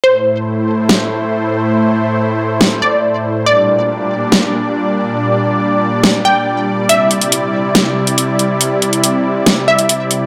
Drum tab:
HH |----------------|----------------|----------------|----------------|
SD |--------o-------|--------o-------|--------o-------|--------o-------|

HH |x-xxx---x--xx-x-|x-xxx---x--xx-x-|
SD |--------o-------|--------o-------|